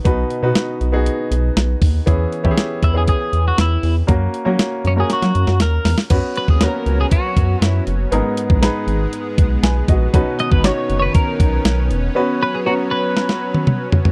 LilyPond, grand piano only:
<<
  \new Staff \with { instrumentName = "Grand piano" } { \time 4/4 \key fis \mixolydian \tempo 4 = 119 << { r1 | r1 | r1 | r1 |
r2. <b' gis''>8 <fis' dis''>8~ | <fis' dis''>8 r2. r8 | r1 | } \\ { <b dis' fis' b'>8 r16 <b dis' fis' b'>8. r16 <b dis' fis' gis'>4. r8. | <b cis' e' gis'>8 r16 <b cis' e' g' gis'>8. r16 <b cis' e' gis'>4. r8. | <ais cis' fis' ais'>8 r16 <ais cis' fis' ais'>8. r16 <ais cis' fis' ais'>4. r8. | <b cis' fis' b'>8. r16 <ais b cis' fis' ais'>4. r4. |
<b dis' gis' ais'>8. r16 <b dis' gis' b'>4. r4. | <cis' dis' fis' b'>8. r16 <cis' dis' fis' cis''>4. r4. | <b cis' fis' b'>8. r16 <b cis' fis' ais''>4. r4. | } >> }
  \new Staff \with { instrumentName = "Grand piano" } { \clef bass \time 4/4 \key fis \mixolydian b,4. r2 r8 | e4. r2 r8 | r1 | r1 |
gis,4. r2 r8 | b,4. r2 r8 | r1 | }
>>